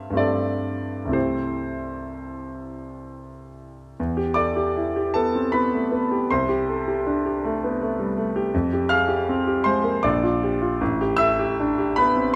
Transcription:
0.00 0.10 G2 soft
0.00 0.10 A3 soft
0.00 0.11 C4 soft
0.00 0.13 G4 soft
0.00 0.13 A4 soft
0.00 0.17 E5 medium
0.00 1.17 F5 medium
0.10 1.08 G2 soft
0.10 1.06 A3 soft
0.10 1.07 C4 soft
0.15 1.10 G4 soft
0.15 1.12 A4 soft
0.15 1.14 D5 medium
1.06 3.90 C2 soft
1.06 3.91 A3 soft
1.06 3.92 C4 soft
1.11 3.92 E4 soft
1.11 3.93 G4 soft
1.11 3.55 C5 soft
4.00 6.27 E2 soft
4.17 4.49 G4 soft
4.34 4.56 A4 soft
4.34 5.11 D5 soft
4.34 5.14 D6 medium
4.56 4.88 G4 soft
4.76 5.08 E4 soft
4.96 5.27 G4 soft
5.14 5.46 B3 soft
5.14 5.51 A4 soft
5.14 5.53 A5 medium
5.35 5.54 C4 soft
5.52 5.84 B3 soft
5.52 6.26 B4 soft
5.52 6.29 B5 medium
5.73 5.92 A3 soft
5.91 6.22 B3 soft
6.11 6.30 G4 soft
6.30 8.50 C2 soft
6.30 8.13 C5 soft
6.30 8.17 C6 medium
6.49 6.79 G4 soft
6.69 6.87 A4 soft
6.88 7.17 G4 soft
7.06 7.36 D4 soft
7.26 7.55 G4 soft
7.44 7.73 A3 soft
7.64 7.81 B3 soft
7.82 8.10 A3 soft
7.99 8.17 G3 soft
8.17 8.46 A3 soft
8.36 8.54 G4 soft
8.54 10.01 F2 soft
8.73 9.03 G4 soft
8.89 9.10 G#4 soft
8.89 9.62 F5 medium
8.89 9.66 F6 medium
9.08 9.39 G4 soft
9.29 9.59 C4 soft
9.47 9.77 G4 soft
9.64 9.96 G#3 soft
9.64 10.01 C5 medium
9.64 10.03 C6 medium
9.84 10.04 A#3 soft
10.03 10.78 A#1 medium
10.03 10.77 D5 soft
10.03 10.80 D6 medium
10.23 10.54 F4 soft
10.43 10.62 G4 soft
10.61 10.81 F4 soft
10.81 12.36 A1 medium
11.01 11.31 G4 soft
11.17 11.38 A4 soft
11.17 11.92 E5 medium
11.17 11.95 E6 medium
11.39 11.70 G4 soft
11.60 11.90 D4 soft
11.78 12.08 G4 soft
11.96 12.27 B3 soft
11.96 12.32 B4 medium
11.96 12.34 B5 medium
12.16 12.34 C4 soft

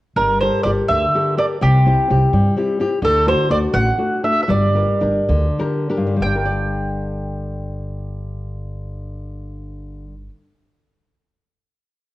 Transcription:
0.16 0.48 G1 medium
0.16 0.64 G3 soft
0.16 0.40 A#4 medium
0.41 0.65 G4 soft
0.41 0.65 A4 soft
0.41 0.66 A#4 soft
0.41 0.63 C5 medium
0.63 0.80 G1 medium
0.63 1.05 G4 soft
0.63 1.05 A4 soft
0.63 1.05 A#4 soft
0.63 0.70 D5 medium
0.88 1.05 D2 medium
0.88 1.37 D3 medium
0.88 1.34 E5 medium
1.15 1.36 G4 soft
1.15 1.37 A4 soft
1.15 1.38 A#4 soft
1.37 1.56 G4 soft
1.37 1.56 A4 soft
1.37 1.57 A#4 soft
1.37 1.45 D5 medium
1.61 1.93 C2 medium
1.61 2.08 C3 medium
1.61 2.53 G4 medium
1.86 2.09 C4 soft
1.86 2.09 E4 soft
1.86 2.09 G4 soft
2.10 2.25 C2 medium
2.10 2.47 C4 soft
2.10 2.48 E4 soft
2.10 2.48 G4 soft
2.33 2.48 G2 medium
2.33 2.78 G3 soft
2.56 2.78 C4 soft
2.56 2.79 E4 soft
2.56 2.79 G4 soft
2.79 2.97 C4 soft
2.79 2.98 E4 soft
2.79 2.98 G4 medium
3.02 3.33 D2 medium
3.02 3.48 D3 medium
3.02 3.26 A4 medium
3.26 3.48 A3 soft
3.26 3.49 D4 soft
3.26 3.49 F#4 soft
3.26 3.49 C5 medium
3.49 3.66 D2 medium
3.49 3.72 A3 soft
3.49 3.89 D4 soft
3.49 3.89 F#4 soft
3.49 3.57 D5 medium
3.73 3.90 A1 medium
3.73 3.97 A3 soft
3.73 4.24 F#5 medium
3.98 4.22 A3 soft
3.98 4.22 D4 soft
3.98 4.23 F#4 soft
4.23 4.43 A3 soft
4.23 4.43 D4 soft
4.23 4.44 F#4 soft
4.23 4.42 E5 medium
4.43 4.49 E5 soft
4.48 4.83 G1 medium
4.48 5.00 G3 medium
4.48 5.56 D5 medium
4.74 5.00 D4 soft
4.74 4.99 G4 soft
4.74 5.00 A#4 soft
5.01 5.20 G1 medium
5.01 5.47 D4 soft
5.01 5.47 G4 soft
5.01 5.47 A#4 soft
5.29 5.49 D2 medium
5.29 5.87 D3 medium
5.59 5.89 D4 soft
5.59 5.89 G4 soft
5.59 5.89 A#4 medium
5.90 6.14 D4 soft
5.90 6.15 G4 soft
5.90 6.15 A#4 soft
5.97 10.04 G2 soft
6.07 10.13 D3 soft
6.17 10.27 G1 medium
6.17 10.23 G3 soft
6.22 10.33 D4 soft
6.22 10.29 G5 medium
6.36 6.45 A#4 soft
6.45 10.52 D5 soft

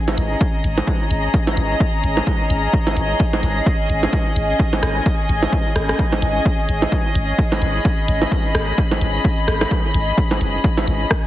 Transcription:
0.00 11.27 C#4 medium
0.00 11.27 G#4 medium
0.00 11.27 D#5 medium
0.00 0.13 G#5 medium
0.08 3.84 A#5 medium
0.08 low bongo medium
0.18 0.35 G#1 loud
0.18 closed hi-hat medium
0.41 kick loud
0.64 0.82 G#1 loud
0.64 closed hi-hat medium
0.78 low bongo medium
0.87 kick loud
1.11 1.28 G#1 medium
1.11 closed hi-hat medium
1.34 kick loud
1.47 low bongo medium
1.57 1.75 G#1 medium
1.57 closed hi-hat medium
1.80 kick loud
2.04 2.21 G#1 loud
2.04 closed hi-hat medium
2.17 low bongo medium
2.27 kick loud
2.50 2.68 G#1 loud
2.50 closed hi-hat medium
2.73 kick loud
2.87 low bongo medium
2.97 3.14 G#1 medium
2.97 closed hi-hat medium
3.20 kick loud
3.33 low bongo medium
3.43 3.61 G#1 medium
3.43 closed hi-hat medium
3.66 kick loud
3.82 7.56 G#5 medium
3.90 4.07 G#1 loud
3.90 closed hi-hat medium
4.03 low bongo medium
4.13 kick loud
4.36 4.54 G#1 loud
4.36 closed hi-hat medium
4.59 kick loud
4.73 low bongo medium
4.83 5.00 G#1 medium
4.83 cross-stick medium
4.83 closed hi-hat medium
5.06 kick loud
5.29 5.47 G#1 loud
5.29 closed hi-hat medium
5.43 low bongo medium
5.52 kick loud
5.76 5.93 G#1 loud
5.76 cross-stick medium
5.76 closed hi-hat medium
5.89 cross-stick medium
5.99 kick loud
6.12 low bongo medium
6.22 6.40 G#1 medium
6.22 closed hi-hat medium
6.46 kick loud
6.69 6.86 G#1 medium
6.69 closed hi-hat medium
6.82 low bongo medium
6.92 kick loud
7.15 7.33 G#1 medium
7.15 closed hi-hat medium
7.38 kick loud
7.52 11.27 B5 medium
7.52 low bongo medium
7.62 7.79 G#1 loud
7.62 closed hi-hat medium
7.85 kick loud
8.08 8.26 G#1 medium
8.08 closed hi-hat medium
8.22 low bongo medium
8.32 kick loud
8.55 8.72 G#1 medium
8.55 cross-stick medium
8.55 closed hi-hat medium
8.78 kick loud
8.91 low bongo medium
9.01 9.19 G#1 medium
9.01 closed hi-hat medium
9.25 kick loud
9.48 9.65 G#1 loud
9.48 cross-stick medium
9.48 closed hi-hat medium
9.61 cross-stick medium
9.61 low bongo medium
9.71 kick loud
9.94 10.12 G#1 loud
9.94 closed hi-hat medium
10.18 kick loud
10.31 low bongo medium
10.41 10.58 F#1 medium
10.41 closed hi-hat medium
10.64 kick loud
10.77 low bongo medium
10.87 11.05 G#1 medium
10.87 closed hi-hat medium
11.11 kick loud
11.11 cross-stick medium

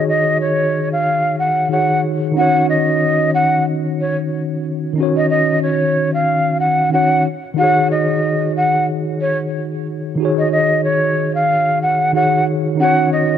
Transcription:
0.00 1.65 D#3 medium
0.00 1.67 D#4 medium
0.00 1.68 F#4 medium
0.00 1.69 G#4 medium
0.00 1.70 C#5 medium
0.08 0.38 D#5 medium
0.41 0.89 C#5 medium
0.93 1.36 F5 medium
1.39 1.68 F#5 medium
1.68 2.30 D#3 medium
1.68 2.33 D#4 soft
1.68 2.36 F#4 soft
1.68 2.37 G#4 soft
1.68 2.01 F#5 medium
1.73 2.38 C#5 medium
2.31 4.91 D#3 medium
2.31 4.92 D#4 medium
2.36 4.93 C#4 medium
2.36 4.95 F#4 medium
2.36 2.66 F#5 loud
2.41 4.96 C#5 medium
2.70 3.31 D#5 medium
3.34 3.64 F#5 medium
4.00 4.17 C#5 medium
4.93 6.87 D#3 medium
4.93 6.88 D#4 medium
4.98 6.89 C#4 medium
4.98 6.91 F#4 medium
5.03 6.92 C#5 medium
5.17 5.29 D#5 medium
5.30 5.59 D#5 medium
5.63 6.11 C#5 medium
6.14 6.58 F5 medium
6.60 6.90 F#5 medium
6.90 7.24 D#3 medium
6.90 7.25 C#4 soft
6.90 7.25 D#4 soft
6.90 7.26 F#4 soft
6.90 7.23 F#5 medium
6.95 7.26 C#5 medium
7.54 10.13 D#3 medium
7.54 10.14 D#4 medium
7.58 10.16 F#4 medium
7.58 10.17 G#4 medium
7.58 7.88 F#5 loud
7.64 10.18 C#5 medium
7.91 8.53 D#5 medium
8.57 8.86 F#5 medium
9.21 9.38 C#5 medium
10.15 12.09 D#3 medium
10.15 12.10 D#4 medium
10.20 12.11 F#4 medium
10.20 12.13 G#4 medium
10.25 12.14 C#5 medium
10.38 10.51 D#5 medium
10.52 10.81 D#5 medium
10.84 11.33 C#5 medium
11.35 11.79 F5 medium
11.82 12.12 F#5 medium
12.12 12.74 D#3 medium
12.12 12.76 D#4 medium
12.12 12.80 F#4 soft
12.12 12.80 G#4 soft
12.12 12.44 F#5 medium
12.17 12.81 C#5 medium
12.75 13.38 D#3 medium
12.75 13.38 D#4 medium
12.80 13.38 C#4 medium
12.80 13.38 F#4 medium
12.80 13.10 F#5 loud
12.85 13.38 C#5 medium
13.13 13.38 D#5 medium

